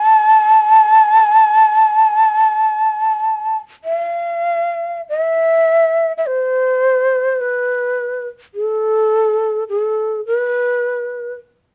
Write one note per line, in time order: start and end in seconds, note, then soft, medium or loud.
0.00 3.57 A5 loud
3.84 5.02 F5 medium
5.09 6.13 E5 medium
6.18 6.28 E5 soft
6.27 7.42 C5 medium
7.41 8.28 B4 medium
8.55 9.64 A4 medium
9.69 10.21 A4 medium
10.26 11.34 B4 medium